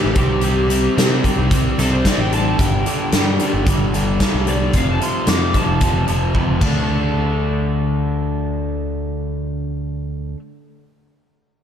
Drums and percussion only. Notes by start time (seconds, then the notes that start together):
0.15 kick, closed hi-hat
0.41 closed hi-hat
0.70 closed hi-hat
0.98 snare, closed hi-hat
1.24 kick, closed hi-hat
1.51 kick, closed hi-hat
1.79 snare, closed hi-hat
2.05 kick, snare, closed hi-hat
2.32 closed hi-hat
2.59 kick, closed hi-hat
2.86 closed hi-hat
3.12 snare, closed hi-hat
3.39 closed hi-hat
3.67 kick, closed hi-hat
3.94 closed hi-hat
4.20 kick, snare, closed hi-hat
4.47 closed hi-hat
4.73 kick, closed hi-hat
5.01 closed hi-hat
5.27 snare, closed hi-hat
5.54 kick, closed hi-hat
5.81 kick, closed hi-hat
6.08 closed hi-hat
6.35 kick, high tom
6.61 kick, crash